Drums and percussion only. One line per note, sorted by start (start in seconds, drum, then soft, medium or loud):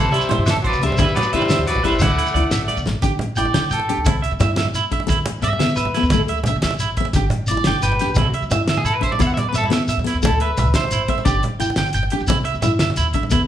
0.13 closed hi-hat medium
0.13 shekere soft
0.21 shekere medium
0.31 closed hi-hat soft
0.31 low conga loud
0.46 snare medium
0.46 closed hi-hat medium
0.46 high conga loud
0.46 shekere loud
0.56 low conga medium
0.64 kick medium
0.64 closed hi-hat soft
0.73 shekere medium
0.83 closed hi-hat soft
0.92 low conga medium
0.97 kick medium
0.97 closed hi-hat medium
0.97 high conga loud
0.97 shekere medium
1.09 low conga soft
1.15 closed hi-hat soft
1.15 low conga loud
1.15 shekere soft
1.22 shekere medium
1.33 closed hi-hat medium
1.40 low conga medium
1.40 shekere soft
1.49 snare medium
1.49 closed hi-hat medium
1.49 high conga medium
1.49 shekere medium
1.57 shekere soft
1.67 closed hi-hat medium
1.67 low conga soft
1.76 low conga medium
1.83 kick medium
1.83 closed hi-hat medium
1.83 shekere soft
1.93 shekere soft
1.99 kick medium
1.99 closed hi-hat medium
1.99 high conga loud
1.99 low conga loud
1.99 shekere medium
2.10 shekere soft
2.19 closed hi-hat medium
2.26 shekere medium
2.35 closed hi-hat soft
2.35 high conga medium
2.51 snare medium
2.51 closed hi-hat medium
2.51 high conga medium
2.51 shekere loud
2.60 shekere soft
2.68 closed hi-hat soft
2.68 low conga medium
2.68 shekere soft
2.77 shekere medium
2.85 snare medium
2.85 low conga medium
2.85 shekere soft
3.02 kick medium
3.02 closed hi-hat medium
3.02 high conga loud
3.02 shekere medium
3.19 closed hi-hat soft
3.19 low conga medium
3.36 closed hi-hat soft
3.36 low conga soft
3.36 shekere medium
3.45 low conga medium
3.54 snare medium
3.54 closed hi-hat medium
3.54 high conga medium
3.62 shekere soft
3.70 closed hi-hat soft
3.70 shekere medium
3.80 low conga medium
3.89 closed hi-hat soft
3.96 shekere soft
4.05 kick medium
4.05 closed hi-hat medium
4.05 high conga medium
4.05 low conga medium
4.05 shekere medium
4.24 closed hi-hat soft
4.30 low conga soft
4.30 shekere soft
4.40 closed hi-hat medium
4.40 low conga loud
4.40 shekere medium
4.56 snare medium
4.56 closed hi-hat medium
4.56 high conga medium
4.65 low conga medium
4.74 closed hi-hat medium
4.74 shekere medium
4.91 kick medium
4.91 closed hi-hat soft
4.91 shekere soft
5.00 low conga medium
5.08 kick loud
5.08 closed hi-hat medium
5.08 high conga medium
5.08 shekere medium
5.26 closed hi-hat soft
5.26 low conga medium
5.42 closed hi-hat soft
5.42 low conga soft
5.42 shekere medium
5.53 low conga medium
5.60 snare medium
5.60 closed hi-hat medium
5.60 high conga medium
5.68 low conga soft
5.68 shekere soft
5.76 closed hi-hat soft
5.76 shekere medium
5.85 low conga medium
5.94 snare soft
5.94 closed hi-hat soft
6.03 shekere soft
6.10 kick medium
6.10 closed hi-hat medium
6.10 high conga loud
6.10 low conga medium
6.10 shekere medium
6.28 closed hi-hat soft
6.36 low conga soft
6.36 shekere soft
6.44 closed hi-hat medium
6.44 low conga loud
6.44 shekere medium
6.62 snare medium
6.62 closed hi-hat medium
6.62 high conga medium
6.70 low conga medium
6.79 closed hi-hat soft
6.79 shekere loud
6.97 kick medium
6.97 closed hi-hat soft
6.97 shekere soft
7.05 low conga medium
7.13 kick medium
7.13 closed hi-hat medium
7.13 high conga loud
7.13 shekere medium
7.30 closed hi-hat medium
7.30 low conga medium
7.47 closed hi-hat medium
7.47 low conga soft
7.47 shekere medium
7.57 low conga medium
7.64 snare medium
7.64 closed hi-hat medium
7.64 high conga medium
7.74 low conga soft
7.74 shekere soft
7.82 closed hi-hat medium
7.82 shekere medium
7.92 low conga medium
7.99 snare soft
7.99 closed hi-hat soft
8.08 shekere soft
8.15 kick medium
8.15 closed hi-hat medium
8.15 high conga loud
8.15 low conga medium
8.15 shekere loud
8.34 closed hi-hat soft
8.42 low conga soft
8.42 shekere soft
8.51 closed hi-hat soft
8.51 low conga loud
8.51 shekere medium
8.68 snare medium
8.68 closed hi-hat medium
8.68 high conga loud
8.77 low conga medium
8.85 closed hi-hat soft
8.85 shekere loud
9.03 kick medium
9.03 closed hi-hat soft
9.03 shekere soft
9.12 low conga medium
9.20 kick medium
9.20 closed hi-hat medium
9.20 high conga loud
9.20 shekere medium
9.29 shekere soft
9.37 closed hi-hat soft
9.37 low conga loud
9.37 shekere soft
9.54 closed hi-hat medium
9.54 low conga soft
9.54 shekere medium
9.64 low conga medium
9.71 snare medium
9.71 closed hi-hat medium
9.71 high conga medium
9.71 shekere soft
9.82 low conga soft
9.88 closed hi-hat medium
9.88 low conga soft
9.88 shekere medium
9.99 low conga medium
10.05 snare soft
10.05 closed hi-hat medium
10.05 shekere soft
10.14 shekere soft
10.23 kick medium
10.23 closed hi-hat medium
10.23 high conga medium
10.23 low conga medium
10.23 shekere loud
10.40 closed hi-hat soft
10.57 kick medium
10.57 closed hi-hat medium
10.57 low conga medium
10.57 shekere medium
10.66 shekere soft
10.74 snare medium
10.74 closed hi-hat medium
10.74 high conga medium
10.74 shekere soft
10.84 low conga medium
10.91 closed hi-hat medium
10.91 shekere loud
11.08 kick medium
11.08 closed hi-hat soft
11.08 low conga soft
11.18 low conga medium
11.18 shekere soft
11.25 kick medium
11.25 closed hi-hat medium
11.25 high conga medium
11.25 shekere loud
11.43 closed hi-hat soft
11.43 low conga medium
11.60 closed hi-hat soft
11.60 shekere loud
11.70 low conga medium
11.76 snare medium
11.76 closed hi-hat medium
11.76 high conga medium
11.86 low conga soft
11.86 shekere soft
11.93 closed hi-hat soft
11.93 shekere medium
12.03 low conga medium
12.10 closed hi-hat soft
12.20 shekere soft
12.27 kick medium
12.27 closed hi-hat medium
12.27 high conga medium
12.27 low conga medium
12.27 shekere loud
12.45 closed hi-hat soft
12.54 low conga soft
12.54 shekere soft
12.62 closed hi-hat soft
12.62 low conga medium
12.62 shekere medium
12.79 snare medium
12.79 closed hi-hat medium
12.79 high conga medium
12.90 low conga medium
12.96 closed hi-hat medium
12.96 shekere medium
13.13 kick medium
13.13 closed hi-hat soft
13.13 shekere soft
13.23 low conga medium
13.30 kick loud
13.30 closed hi-hat medium
13.30 high conga medium
13.30 shekere medium